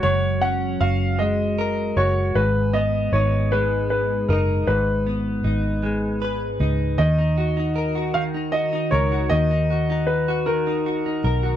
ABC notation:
X:1
M:6/8
L:1/16
Q:3/8=52
K:Ebm
V:1 name="Grand piano"
d2 g2 f2 e4 d2 | c2 e2 d2 c2 c2 B2 | c8 z4 | e6 f2 e2 d2 |
e4 c2 B4 z2 |]
V:2 name="Clean electric guitar"
[G,A,DGB]2 D2 G2 A,2 B2 G2 | A,,2 C2 E2 A,4 E2 | A,,2 C2 E2 A,2 c2 E2 | E, E G E B G E, E G E B G |
E, E G E2 G E, E G E B G |]
V:3 name="Fingered electric bass" clef=bass
G,,,4 G,,,6 G,,,2 | A,,,4 A,,,6 G,,,2 | A,,,4 A,,,6 D,,2 | E,,8- E,,2 D,,2 |
E,,8- E,,2 C,,2 |]